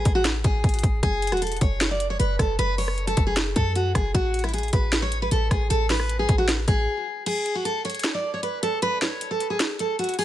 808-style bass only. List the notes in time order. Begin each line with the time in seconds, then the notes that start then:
0.06 A1
0.45 A1
0.64 A1
0.83 A1
1.03 F#1
1.32 E1
1.61 F#1
2.20 F#1
2.39 F#1
2.59 F#1
3.17 F#1
3.56 F#2
3.95 F#1
4.15 A1
4.73 A1
5.32 A1
5.51 A1
5.70 A1
6.29 A1
6.68 A1